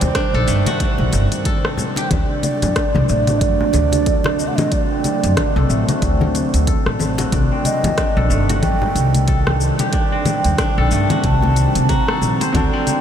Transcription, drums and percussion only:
0.01 closed hi-hat, low conga, shaker
0.15 kick, cross-stick, closed hi-hat, shaker
0.48 closed hi-hat, shaker
0.66 closed hi-hat, muted conga, high conga, shaker
0.80 kick, closed hi-hat, shaker
0.98 muted conga, high conga
1.13 closed hi-hat, muted conga, shaker
1.32 closed hi-hat, shaker
1.45 kick, closed hi-hat, shaker
1.65 cross-stick
1.78 muted conga, high conga, low conga, shaker
1.96 closed hi-hat, muted conga, shaker
2.11 kick, closed hi-hat, low conga, shaker
2.43 closed hi-hat, high conga, shaker
2.62 closed hi-hat, low conga, shaker
2.76 kick, cross-stick, closed hi-hat, shaker
2.95 low conga
3.09 shaker
3.27 closed hi-hat, high conga, shaker
3.41 kick, closed hi-hat, shaker
3.61 low conga
3.73 closed hi-hat, muted conga, low conga, shaker
3.92 closed hi-hat, high conga, shaker
4.06 kick, closed hi-hat, shaker
4.24 cross-stick, muted conga
4.39 shaker
4.58 closed hi-hat, muted conga, high conga, low conga, shaker
4.72 kick, closed hi-hat, shaker
5.04 closed hi-hat, high conga, shaker
5.24 closed hi-hat, shaker
5.37 kick, cross-stick, closed hi-hat, low conga, shaker
5.70 shaker
5.89 closed hi-hat, muted conga, high conga, shaker
6.02 kick, closed hi-hat, shaker
6.21 muted conga, high conga, low conga
6.35 closed hi-hat, muted conga, shaker
6.54 closed hi-hat, shaker
6.67 kick, closed hi-hat, shaker
6.86 cross-stick
6.99 muted conga, high conga, low conga, shaker
7.18 closed hi-hat, muted conga, shaker
7.32 kick, closed hi-hat, shaker
7.65 closed hi-hat, high conga, shaker
7.84 closed hi-hat, low conga, shaker
7.98 kick, cross-stick, closed hi-hat, shaker
8.31 shaker
8.49 closed hi-hat, high conga, shaker
8.63 kick, closed hi-hat, low conga, shaker
8.82 low conga
8.96 closed hi-hat, muted conga, shaker
9.15 closed hi-hat, high conga, shaker
9.28 kick, closed hi-hat, shaker
9.47 cross-stick, muted conga, low conga
9.61 shaker
9.79 closed hi-hat, muted conga, high conga, shaker
9.93 kick, closed hi-hat, shaker
10.25 closed hi-hat, high conga, low conga, shaker
10.44 closed hi-hat, shaker
10.58 kick, cross-stick, closed hi-hat, shaker
10.91 shaker
11.10 closed hi-hat, muted conga, high conga, low conga, shaker
11.24 kick, closed hi-hat, shaker
11.42 muted conga, high conga
11.56 closed hi-hat, muted conga, shaker
11.75 closed hi-hat, shaker
11.89 kick, closed hi-hat, low conga, shaker
12.08 cross-stick
12.22 muted conga, high conga, shaker
12.41 closed hi-hat, muted conga, shaker
12.54 kick, closed hi-hat, low conga, shaker
12.87 closed hi-hat, high conga, shaker

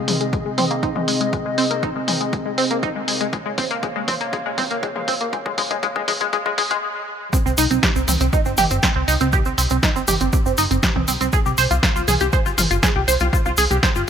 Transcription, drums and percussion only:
0.08 open hi-hat, mid tom
0.21 closed hi-hat
0.33 kick, closed hi-hat
0.58 open hi-hat, mid tom
0.71 closed hi-hat
0.83 kick, closed hi-hat
0.96 mid tom
1.08 open hi-hat
1.21 closed hi-hat
1.33 kick, closed hi-hat
1.58 open hi-hat
1.71 closed hi-hat
1.83 kick, closed hi-hat
2.08 open hi-hat, mid tom
2.21 closed hi-hat
2.33 kick, closed hi-hat
2.58 open hi-hat
2.71 closed hi-hat
2.83 kick, closed hi-hat
3.08 open hi-hat
3.21 closed hi-hat
3.33 kick, closed hi-hat
3.58 kick, open hi-hat
3.71 closed hi-hat
3.83 kick, closed hi-hat
4.08 kick, open hi-hat, mid tom
4.21 closed hi-hat
4.33 kick, closed hi-hat
4.58 kick, open hi-hat, mid tom
4.71 closed hi-hat
4.83 kick, closed hi-hat
4.96 mid tom
5.08 kick, open hi-hat
5.21 closed hi-hat
5.33 kick, closed hi-hat
5.46 kick
5.58 kick, open hi-hat
5.71 kick, closed hi-hat
5.83 kick, closed hi-hat
5.96 kick
6.08 kick, open hi-hat, mid tom
6.21 kick, closed hi-hat
6.33 kick, closed hi-hat
6.46 kick
6.58 kick, open hi-hat
6.71 kick, closed hi-hat
7.33 kick, closed hi-hat, shaker
7.47 shaker
7.58 open hi-hat, shaker
7.71 closed hi-hat, shaker
7.83 kick, snare, closed hi-hat, shaker
7.96 shaker
8.08 open hi-hat, mid tom, shaker
8.20 closed hi-hat, shaker
8.33 kick, closed hi-hat, shaker
8.45 shaker
8.57 open hi-hat, mid tom, shaker
8.70 closed hi-hat, shaker
8.83 kick, snare, closed hi-hat, shaker
9.08 open hi-hat, shaker
9.20 closed hi-hat, shaker
9.33 kick, closed hi-hat, shaker
9.45 shaker
9.58 open hi-hat, shaker
9.70 closed hi-hat, shaker
9.83 kick, snare, closed hi-hat, shaker
9.96 shaker
10.08 open hi-hat, mid tom, shaker
10.20 closed hi-hat, shaker
10.33 kick, closed hi-hat, shaker
10.46 shaker
10.57 open hi-hat, shaker
10.71 closed hi-hat, shaker
10.83 kick, snare, closed hi-hat, shaker
10.96 mid tom
11.08 open hi-hat, shaker
11.21 closed hi-hat, shaker
11.33 kick, closed hi-hat, shaker
11.46 shaker
11.57 open hi-hat, shaker
11.71 closed hi-hat, shaker
11.83 kick, snare, closed hi-hat, shaker
11.96 shaker
12.08 open hi-hat, mid tom, shaker
12.20 closed hi-hat, shaker
12.33 kick, closed hi-hat, shaker
12.46 shaker
12.58 open hi-hat, mid tom, shaker
12.71 closed hi-hat, shaker
12.83 kick, snare, closed hi-hat, shaker
13.08 open hi-hat, shaker
13.20 closed hi-hat, shaker
13.33 kick, closed hi-hat, shaker
13.46 shaker
13.57 open hi-hat, shaker
13.71 closed hi-hat, shaker
13.83 kick, snare, closed hi-hat, shaker
13.95 shaker

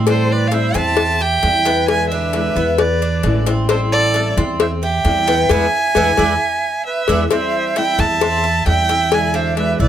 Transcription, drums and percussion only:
0.07 cowbell
0.52 cowbell
0.74 cowbell
0.97 cowbell
1.43 cowbell
1.65 cowbell
1.88 cowbell
2.33 cowbell
2.78 cowbell
3.23 cowbell
3.47 cowbell
3.69 cowbell
4.14 cowbell
4.38 cowbell
4.60 cowbell
5.05 cowbell
5.28 cowbell
5.49 cowbell
5.95 cowbell
6.17 cowbell
7.08 cowbell
7.31 cowbell
7.76 cowbell
7.99 cowbell
8.21 cowbell
8.66 cowbell
8.89 cowbell
9.12 cowbell
9.57 cowbell

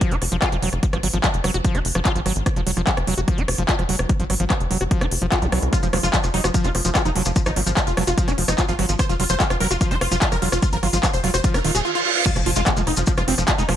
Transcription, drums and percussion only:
0.01 kick, closed hi-hat
0.11 closed hi-hat
0.22 cross-stick, open hi-hat
0.32 closed hi-hat
0.42 kick, cross-stick, clap, closed hi-hat
0.52 closed hi-hat
0.62 open hi-hat
0.73 cross-stick, closed hi-hat
0.83 kick, closed hi-hat
0.93 cross-stick, closed hi-hat
1.03 open hi-hat
1.14 closed hi-hat
1.24 kick, cross-stick, clap, closed hi-hat
1.34 closed hi-hat
1.44 cross-stick, open hi-hat
1.54 closed hi-hat
1.65 kick, closed hi-hat
1.75 cross-stick, closed hi-hat
1.85 open hi-hat
1.95 cross-stick, closed hi-hat
2.05 kick, clap, closed hi-hat
2.16 closed hi-hat
2.26 cross-stick, open hi-hat
2.36 closed hi-hat
2.46 kick, cross-stick, closed hi-hat
2.56 closed hi-hat
2.67 open hi-hat
2.77 cross-stick, closed hi-hat
2.87 kick, clap, closed hi-hat
2.97 cross-stick, closed hi-hat
3.07 open hi-hat
3.18 closed hi-hat
3.28 kick, cross-stick, closed hi-hat
3.38 closed hi-hat
3.48 cross-stick, open hi-hat
3.58 closed hi-hat
3.69 kick, clap, closed hi-hat
3.79 cross-stick, closed hi-hat
3.89 open hi-hat
3.99 cross-stick, closed hi-hat
4.09 kick, closed hi-hat
4.20 closed hi-hat
4.30 cross-stick, open hi-hat
4.40 closed hi-hat
4.50 kick, cross-stick, clap, closed hi-hat
4.60 closed hi-hat
4.71 open hi-hat
4.81 cross-stick, closed hi-hat
4.91 kick, closed hi-hat
5.01 cross-stick, closed hi-hat
5.11 open hi-hat
5.22 closed hi-hat
5.32 kick, cross-stick, clap, closed hi-hat
5.42 closed hi-hat
5.52 cross-stick, open hi-hat
5.62 closed hi-hat
5.73 kick, cross-stick, closed hi-hat, maracas
5.83 closed hi-hat, maracas
5.93 cross-stick, open hi-hat
6.03 closed hi-hat, maracas
6.13 kick, clap, closed hi-hat, maracas
6.24 cross-stick, closed hi-hat, maracas
6.34 open hi-hat
6.44 cross-stick, closed hi-hat, maracas
6.54 kick, closed hi-hat, maracas
6.64 closed hi-hat, maracas
6.75 cross-stick, open hi-hat
6.85 closed hi-hat, maracas
6.95 kick, cross-stick, clap, closed hi-hat, maracas
7.05 closed hi-hat, maracas
7.16 open hi-hat
7.25 cross-stick, maracas
7.36 kick, closed hi-hat, maracas
7.46 cross-stick, closed hi-hat, maracas
7.56 open hi-hat
7.67 closed hi-hat, maracas
7.77 kick, cross-stick, clap, closed hi-hat, maracas
7.87 closed hi-hat, maracas
7.97 cross-stick, open hi-hat
8.07 closed hi-hat, maracas
8.18 kick, closed hi-hat, maracas
8.28 cross-stick, closed hi-hat, maracas
8.38 open hi-hat
8.48 cross-stick, closed hi-hat, maracas
8.58 kick, clap, closed hi-hat, maracas
8.69 closed hi-hat, maracas
8.79 cross-stick, open hi-hat
8.89 closed hi-hat, maracas
8.99 kick, cross-stick, closed hi-hat, maracas
9.09 closed hi-hat, maracas
9.20 open hi-hat
9.29 cross-stick, closed hi-hat, maracas
9.40 kick, clap, closed hi-hat, maracas
9.50 cross-stick, closed hi-hat, maracas
9.60 open hi-hat
9.71 closed hi-hat, maracas
9.81 kick, cross-stick, closed hi-hat, maracas
9.91 closed hi-hat, maracas
10.01 cross-stick, open hi-hat
10.11 closed hi-hat, maracas
10.21 kick, clap, closed hi-hat, maracas
10.32 cross-stick, closed hi-hat, maracas
10.42 open hi-hat
10.52 cross-stick, closed hi-hat, maracas
10.63 kick, closed hi-hat, maracas
10.72 closed hi-hat, maracas
10.83 cross-stick, open hi-hat
10.93 closed hi-hat, maracas
11.03 kick, cross-stick, clap, closed hi-hat, maracas
11.14 closed hi-hat, maracas
11.24 open hi-hat
11.34 cross-stick, closed hi-hat, maracas
11.44 kick, closed hi-hat, maracas
11.54 cross-stick, closed hi-hat, maracas
11.65 open hi-hat
11.75 closed hi-hat, maracas
12.26 kick, closed hi-hat, crash, maracas
12.36 cross-stick, closed hi-hat, maracas
12.46 open hi-hat
12.56 closed hi-hat, maracas
12.66 kick, cross-stick, clap, closed hi-hat, maracas
12.77 closed hi-hat, maracas
12.87 cross-stick, open hi-hat
12.97 closed hi-hat, maracas
13.06 kick, closed hi-hat, maracas
13.17 cross-stick, closed hi-hat, maracas
13.28 open hi-hat
13.38 cross-stick, closed hi-hat, maracas
13.47 kick, clap, closed hi-hat, maracas
13.58 closed hi-hat, maracas
13.69 cross-stick, open hi-hat

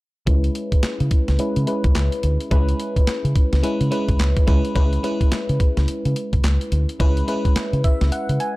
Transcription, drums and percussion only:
0.27 kick, closed hi-hat
0.44 closed hi-hat
0.55 closed hi-hat
0.72 kick, closed hi-hat
0.83 snare, clap, closed hi-hat
1.00 closed hi-hat
1.11 kick, closed hi-hat
1.28 snare, closed hi-hat
1.39 closed hi-hat
1.56 closed hi-hat
1.67 closed hi-hat
1.84 kick, closed hi-hat
1.95 snare, clap, closed hi-hat
2.12 closed hi-hat
2.23 closed hi-hat
2.40 closed hi-hat
2.51 kick, closed hi-hat
2.69 closed hi-hat
2.80 closed hi-hat
2.96 kick, closed hi-hat
3.07 snare, clap, closed hi-hat
3.25 closed hi-hat
3.36 kick, closed hi-hat
3.53 snare, closed hi-hat
3.64 closed hi-hat
3.81 closed hi-hat
3.92 closed hi-hat
4.09 kick, closed hi-hat
4.19 snare, clap, closed hi-hat
4.37 kick, closed hi-hat
4.47 kick, closed hi-hat
4.65 closed hi-hat
4.76 kick, closed hi-hat
4.93 closed hi-hat
5.04 closed hi-hat
5.21 kick, closed hi-hat
5.32 snare, clap, closed hi-hat
5.49 closed hi-hat
5.60 kick, closed hi-hat
5.77 snare, closed hi-hat
5.88 closed hi-hat
6.05 closed hi-hat
6.16 closed hi-hat
6.33 kick, closed hi-hat
6.44 snare, clap, closed hi-hat
6.61 closed hi-hat
6.72 closed hi-hat
6.89 closed hi-hat
7.00 kick, closed hi-hat
7.17 closed hi-hat
7.28 closed hi-hat
7.45 kick, closed hi-hat
7.56 snare, clap, closed hi-hat
7.73 closed hi-hat
7.84 kick, closed hi-hat
8.01 snare, closed hi-hat
8.12 closed hi-hat
8.29 closed hi-hat
8.40 closed hi-hat

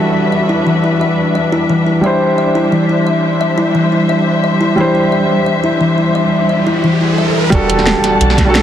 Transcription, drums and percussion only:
7.52 kick, closed hi-hat
7.70 closed hi-hat
7.79 snare
7.87 snare, closed hi-hat
8.04 snare, closed hi-hat
8.21 closed hi-hat
8.30 snare
8.38 kick, snare, closed hi-hat
8.55 snare, closed hi-hat

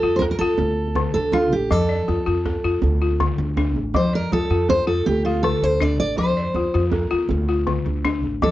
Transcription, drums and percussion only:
0.12 djembe slap
0.21 djembe slap, djembe tone, djembe bass
0.58 djembe slap, djembe tone, djembe bass
0.68 djembe slap
0.87 djembe tone
0.95 djembe slap, djembe bass
1.14 djembe slap, djembe tone
1.32 djembe slap, djembe bass
1.42 djembe slap
1.52 djembe slap, djembe tone
1.62 djembe slap
1.71 djembe slap, djembe bass
1.80 djembe slap, djembe tone
1.99 djembe slap
2.08 djembe slap, djembe bass
2.18 djembe tone
2.46 djembe slap, djembe bass
2.82 djembe slap, djembe tone, djembe bass
2.92 djembe slap
3.11 djembe tone
3.20 djembe slap, djembe bass
3.38 djembe tone
3.57 djembe slap, djembe bass
3.67 djembe slap
3.76 djembe tone
3.94 djembe slap, djembe bass
4.04 djembe tone
4.32 djembe slap, djembe bass
4.42 djembe slap, djembe tone
4.60 djembe slap
4.69 djembe slap, djembe tone, djembe bass
5.07 djembe slap, djembe tone, djembe bass
5.17 djembe slap
5.34 djembe tone
5.44 djembe slap
5.63 djembe slap, djembe tone
5.81 djembe slap, djembe bass
5.91 djembe slap
6.00 djembe slap, djembe tone
6.08 djembe slap
6.17 djembe slap, djembe bass
6.27 djembe tone
6.54 djembe slap, djembe bass
6.64 djembe slap, djembe tone
6.83 djembe slap
6.92 djembe slap, djembe tone, djembe bass
7.29 djembe slap, djembe tone, djembe bass
7.39 djembe slap
7.58 djembe tone
7.67 djembe slap, djembe bass
7.87 djembe slap, djembe tone
8.05 djembe slap, djembe bass
8.14 djembe slap
8.24 djembe slap, djembe tone
8.33 djembe slap
8.42 djembe slap, djembe bass

